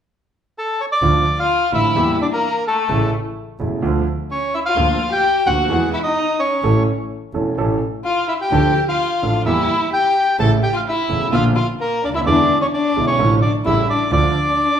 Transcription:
0.58 bandoneon A4
0.81 bandoneon C#5
0.92 bandoneon D5
1.02 double bass D2, grand piano D2 D3 F3 A3 F4
1.38 violin F4, bandoneon F5
1.72 double bass A1, grand piano A1 A2 D3 F3 A3 F4, violin E4, bandoneon E5
1.95 double bass E2, grand piano E2 E3 G3 A#3 G4
2.21 violin D4, bandoneon D5
2.32 violin A#3, bandoneon A#4
2.67 violin A3, bandoneon A4
2.89 double bass A1, grand piano A1 A2 C#3 E3 A3 E4
3.59 grand piano E1 E2 C#3 E3 A3 E4, double bass E1
3.82 grand piano D2 D3 F3 A3 F4, double bass D2
4.31 violin C#4, bandoneon C#5
4.54 violin E4, bandoneon E5
4.66 violin F4, bandoneon F5
4.76 double bass D2, grand piano D2 D3 F3 A#3 F4
5.12 violin G4, bandoneon G5
5.46 double bass D2, grand piano D2 D3 F3 A#3 F4, violin F#4, bandoneon F#5
5.69 double bass E2, grand piano E2 E3 G#3 B3 G#4
5.93 violin E4, bandoneon E5
6.04 violin D#4, bandoneon D#5
6.39 violin C#4, bandoneon C#5
6.63 double bass A1, grand piano A1 A2 E3 A3 C#4 A4
7.34 double bass E1, grand piano E1 E2 E3 A3 C#4 A4
7.57 double bass A1, grand piano A1 A2 E3 A3 C#4 A4
8.04 violin F4, bandoneon F5
8.28 violin E4, bandoneon E5
8.41 violin G4, bandoneon G5
8.51 double bass D2, grand piano D2 D3 F3 A3 D4 A4
8.88 violin F4, bandoneon F5
9.22 grand piano A1 A2 F3 A3 D4 A4, double bass A1
9.45 double bass E2, grand piano E2 E3 G3 A#3 G4, violin E4, bandoneon E5
9.93 violin G4, bandoneon G5
10.39 double bass A1, grand piano A1 A2 C#3 E3 A3 E4, violin A4, bandoneon A5
10.62 violin G4, bandoneon G5
10.74 violin F4, bandoneon F5
10.86 violin E4, bandoneon E5
11.09 grand piano E1 E2 C#3 E3 A3 E4, double bass E1
11.32 double bass A#1, grand piano A#1 A#2 D3 F3 A#3 F4, violin F4, bandoneon F5
11.56 violin F4, bandoneon F5
11.79 violin A#3, bandoneon A#4
12.02 double bass D2, violin D4, bandoneon D5
12.09 grand piano C#2
12.14 grand piano D2, violin E4, bandoneon E5
12.21 grand piano D#2
12.25 double bass E2, grand piano E2 D3 E3 G#3 B3 E4, violin D4, bandoneon D5
12.61 violin C#4, bandoneon C#5
12.71 violin D4, bandoneon D5
12.96 double bass B1, grand piano B1 B2 D3 G#3 B3 E4
13.07 violin C#4, bandoneon C#5
13.19 double bass A1, grand piano A1 A2 D3 F3 A3 F4
13.42 violin D4, bandoneon D5
13.65 double bass A1, grand piano A1 A2 C#3 G3 A3 E4, violin E4, bandoneon E5
13.89 violin D4, bandoneon D5
14.11 grand piano D2 D3 F3 A3 F4, double bass D2, violin D4, bandoneon D5

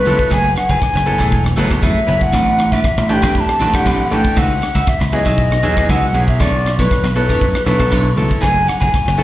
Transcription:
Already playing: flute B4
0.05 slap bass C#2, grand piano F#3 B3 E4 A4, muted clean electric guitar stroke, ride
0.18 muted clean electric guitar stroke, kick, ride
0.30 slap bass F#1, clean electric guitar A3 E4 G#4 B4, flute G#5, kick, cross-stick, ride
0.55 flute F#5, muted clean electric guitar stroke, cross-stick, ride
0.69 slap bass F#1, clean electric guitar E4 G#4 B4, flute G#5, kick, ride
0.80 muted clean electric guitar stroke, kick, cross-stick, ride
0.94 slap bass F#1, muted clean electric guitar stroke, cross-stick
1.06 grand piano F#3 B3 E4 A4, muted clean electric guitar stroke, ride
1.18 slap bass E1, clean electric guitar A3 E4 G#4 B4, kick, cross-stick, ride
1.32 kick, ride
1.44 muted clean electric guitar stroke, cross-stick
1.56 slap bass F#1, grand piano F#3 B3 E4 A4, clean electric guitar A3 E4 G#4 B4, ride
1.70 grand piano F#3 B3 E4 A4, muted clean electric guitar stroke, kick, cross-stick, ride
1.82 slap bass F#2, clean electric guitar A3 E4 G#4 B4, flute E5, kick, cross-stick, ride
1.97 muted slap bass stroke
2.07 slap bass F#1, grand piano F#3 B3 E4 B4, muted clean electric guitar stroke, ride
2.21 flute F#5, muted clean electric guitar stroke, kick, ride
2.33 slap bass A1, clean electric guitar C4 D4 G4 B4, kick, cross-stick, ride
2.59 muted clean electric guitar stroke, cross-stick, ride
2.72 slap bass A1, clean electric guitar D4 G4 B4, flute E5, kick, ride
2.84 muted clean electric guitar stroke, kick, cross-stick, ride
2.97 slap bass A1, muted clean electric guitar stroke, cross-stick
3.09 grand piano E3 A3 D4 G4, flute A5, muted clean electric guitar stroke, ride
3.13 flute G5
3.22 slap bass E2, clean electric guitar C4 D4 G4 B4, kick, cross-stick, ride
3.35 flute B5, kick, ride
3.40 flute A5
3.48 muted clean electric guitar stroke, muted slap bass stroke, cross-stick
3.60 slap bass A1, grand piano E3 A3 D4 F#4, clean electric guitar C4 D4 G4 B4, ride
3.73 grand piano E3 A3 D4 G4, flute F#5, muted clean electric guitar stroke, kick, cross-stick, ride
3.86 slap bass A1, clean electric guitar C4 D4 G4 B4, kick, cross-stick, ride
4.11 slap bass A1, grand piano E3 A3 D4 A4, flute G5, muted clean electric guitar stroke, ride
4.24 muted clean electric guitar stroke, kick, ride
4.36 slap bass C#2, clean electric guitar D#4 F#4 B4 E5, flute F#5, kick, cross-stick, ride
4.61 muted clean electric guitar stroke, cross-stick, ride
4.75 slap bass C#2, clean electric guitar F#4 B4 E5, kick, ride
4.87 flute E5, muted clean electric guitar stroke, kick, cross-stick, ride
5.00 slap bass C#2, muted clean electric guitar stroke, cross-stick
5.13 grand piano F#3 B3 E4 G#4, flute D#5, muted clean electric guitar stroke, ride
5.25 slap bass B1, clean electric guitar D#4 F#4 B4 E5, kick, cross-stick, ride
5.38 kick, ride
5.51 muted clean electric guitar stroke, cross-stick
5.63 slap bass D#2, grand piano F#3 B3 E4 G#4, clean electric guitar D#4 F#4 B4 E5, ride
5.77 grand piano F#3 B3 E4 G#4, muted clean electric guitar stroke, kick, cross-stick, ride
5.89 slap bass C#2, clean electric guitar D#4 F#4 B4 E5, flute F#5, kick, cross-stick, ride
6.14 slap bass B1, grand piano F#3 B3 E4 G#4, muted clean electric guitar stroke, ride
6.28 flute E5, muted clean electric guitar stroke, kick, ride
6.40 slap bass B1, clean electric guitar D4 E4 A4 C#5, flute D5, kick, cross-stick, ride
6.66 muted clean electric guitar stroke, cross-stick, ride
6.79 slap bass B1, clean electric guitar E4 A4 C#5, flute B4, kick, ride
6.91 muted clean electric guitar stroke, kick, cross-stick, ride
7.03 slap bass B1, muted clean electric guitar stroke, cross-stick
7.16 grand piano F#3 B3 E4 A4, flute B4, muted clean electric guitar stroke, ride
7.29 slap bass F#2, clean electric guitar D4 E4 A4 C#5, kick, cross-stick, ride
7.41 kick, ride
7.54 muted slap bass stroke, muted clean electric guitar stroke, cross-stick
7.66 slap bass B1, grand piano F#3 B3 E4 A4, clean electric guitar D4 E4 A4 C#5, flute B4, ride
7.79 grand piano F#3 B3 E4 A4, muted clean electric guitar stroke, kick, cross-stick, ride
7.91 slap bass B1, clean electric guitar D4 E4 A4 C#5, kick, cross-stick, ride
8.17 slap bass C#2, grand piano F#3 B3 E4 A4, muted clean electric guitar stroke, ride
8.29 muted clean electric guitar stroke, kick, ride
8.41 slap bass F#1, clean electric guitar A3 E4 G#4 B4, flute G#5, kick, cross-stick, ride
8.67 flute F#5, muted clean electric guitar stroke, cross-stick, ride
8.80 slap bass F#1, clean electric guitar E4 G#4 B4, flute G#5, kick, ride
8.92 muted clean electric guitar stroke, kick, cross-stick, ride
9.06 slap bass F#1, muted clean electric guitar stroke, cross-stick
9.18 grand piano F#3 B3 E4 A4, muted clean electric guitar stroke, ride

